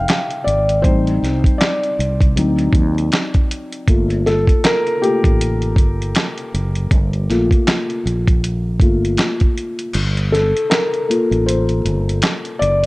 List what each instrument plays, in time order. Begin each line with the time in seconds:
Already playing: felt piano G3 A3 E4 E5 F5 G5
0.08 snare, clap, closed hi-hat
0.30 closed hi-hat
0.44 fretless electric bass G#1, felt piano D5, closed hi-hat
0.69 closed hi-hat
0.82 fretless electric bass A1, felt piano G3 C4 D#4 C5, kick, closed hi-hat
1.07 closed hi-hat
1.23 fretless electric bass C2, snare, closed hi-hat
1.44 kick, closed hi-hat
1.58 felt piano D5, snare, clap, closed hi-hat
1.83 closed hi-hat
1.99 fretless electric bass C2, closed hi-hat
2.21 kick, closed hi-hat
2.36 fretless electric bass D2, felt piano F#3 C4 D#4, closed hi-hat
2.59 closed hi-hat
2.73 fretless electric bass D#2, kick, closed hi-hat
2.98 closed hi-hat
3.12 snare, clap, closed hi-hat
3.34 kick, closed hi-hat
3.51 closed hi-hat
3.72 closed hi-hat
3.88 fretless electric bass G1, felt piano A3 A#3 F4, kick, closed hi-hat
4.10 closed hi-hat
4.26 felt piano A4, snare, closed hi-hat
4.47 kick, closed hi-hat
4.64 felt piano A#4, snare, clap, closed hi-hat
4.87 closed hi-hat
5.02 felt piano A3 A#3 F4 G4, closed hi-hat
5.24 fretless electric bass A1, kick, closed hi-hat
5.41 closed hi-hat
5.62 closed hi-hat
5.76 fretless electric bass G1, kick, closed hi-hat
6.02 closed hi-hat
6.15 snare, clap, closed hi-hat
6.38 closed hi-hat
6.54 fretless electric bass F#1, closed hi-hat
6.75 closed hi-hat
6.91 fretless electric bass G1, kick, closed hi-hat
7.13 closed hi-hat
7.29 fretless electric bass A#1, felt piano A3 A#3 F4, snare, closed hi-hat
7.51 kick, closed hi-hat
7.67 snare, clap, closed hi-hat
7.90 closed hi-hat
8.06 fretless electric bass A#1, closed hi-hat
8.28 kick, closed hi-hat
8.44 closed hi-hat
8.80 fretless electric bass G1, felt piano A3 A#3 F4, kick, closed hi-hat
9.05 closed hi-hat
9.17 snare, clap, closed hi-hat
9.40 kick, closed hi-hat
9.58 closed hi-hat
9.79 closed hi-hat
9.93 fretless electric bass G1, closed hi-hat, crash
10.17 closed hi-hat
10.32 felt piano A4, snare, closed hi-hat
10.57 closed hi-hat
10.70 felt piano A#4, snare, clap, closed hi-hat
10.94 closed hi-hat
11.09 felt piano A#3 F4 A4, closed hi-hat
11.31 fretless electric bass A1, closed hi-hat
11.46 felt piano C5, closed hi-hat
11.69 closed hi-hat
11.85 fretless electric bass G1, closed hi-hat
12.09 closed hi-hat
12.22 snare, clap, closed hi-hat
12.45 closed hi-hat
12.59 fretless electric bass F#1, felt piano D5, closed hi-hat